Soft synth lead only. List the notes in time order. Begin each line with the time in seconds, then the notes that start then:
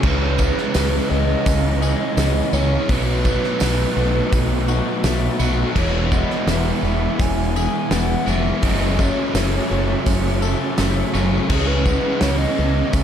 0.03 B4
1.09 D#5
2.52 C#5
2.91 B4
5.77 C#5
6.12 D#5
6.48 E5
7.20 G#5
7.55 G#5
7.92 F#5
8.29 E5
8.65 D#5
9.03 C#5
11.50 G#4
11.67 B4
12.21 C#5
12.38 D#5
12.93 E5